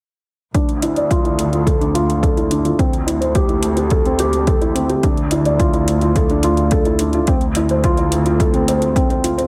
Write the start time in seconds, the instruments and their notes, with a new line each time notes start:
0.54 double bass section D2, felt piano D4, kick, closed hi-hat
0.69 closed hi-hat
0.82 felt piano E4, closed hi-hat
0.96 felt piano D5, closed hi-hat
1.10 felt piano F4, kick, closed hi-hat
1.25 felt piano E4, closed hi-hat
1.39 closed hi-hat
1.53 felt piano F4, closed hi-hat
1.66 felt piano A4, kick, closed hi-hat
1.80 felt piano D4, closed hi-hat
1.95 felt piano F4, closed hi-hat
2.10 closed hi-hat
2.23 felt piano A4, kick, closed hi-hat
2.37 felt piano E4, closed hi-hat
2.50 felt piano D4, closed hi-hat
2.65 felt piano F4, closed hi-hat
2.79 double bass section D2, felt piano C4, kick, closed hi-hat
2.93 closed hi-hat
3.07 felt piano E4, closed hi-hat
3.21 felt piano C5, closed hi-hat
3.35 felt piano G4, kick, closed hi-hat
3.49 felt piano E4, closed hi-hat
3.63 closed hi-hat
3.77 felt piano G4, closed hi-hat
3.90 felt piano A4, kick, closed hi-hat
4.05 felt piano C4, closed hi-hat
4.19 felt piano G4, closed hi-hat
4.33 closed hi-hat
4.47 felt piano A4, kick, closed hi-hat
4.62 felt piano E4, closed hi-hat
4.75 felt piano C4, closed hi-hat
4.89 felt piano G4, closed hi-hat
5.03 double bass section D2, felt piano D4, kick, closed hi-hat
5.17 closed hi-hat
5.31 felt piano E4, closed hi-hat
5.45 felt piano D5, closed hi-hat
5.59 felt piano F4, kick, closed hi-hat
5.74 felt piano E4, closed hi-hat
5.88 closed hi-hat
6.01 felt piano F4, closed hi-hat
6.16 felt piano A4, kick, closed hi-hat
6.30 felt piano D4, closed hi-hat
6.43 felt piano F4, closed hi-hat
6.57 closed hi-hat
6.71 felt piano A4, kick, closed hi-hat
6.85 felt piano E4, closed hi-hat
6.99 felt piano D4, closed hi-hat
7.13 felt piano F4, closed hi-hat
7.27 double bass section D2, felt piano C4, kick, closed hi-hat
7.41 closed hi-hat
7.55 felt piano E4, closed hi-hat
7.69 felt piano C5, closed hi-hat
7.84 felt piano F4, kick, closed hi-hat
7.97 felt piano E4, closed hi-hat
8.12 closed hi-hat
8.26 felt piano F4, closed hi-hat
8.40 felt piano A4, kick, closed hi-hat
8.54 felt piano C4, closed hi-hat
8.68 felt piano C5, closed hi-hat
8.82 closed hi-hat
8.96 felt piano C4, kick, closed hi-hat
9.10 felt piano C4, closed hi-hat
9.24 felt piano F4, closed hi-hat
9.38 felt piano C5, closed hi-hat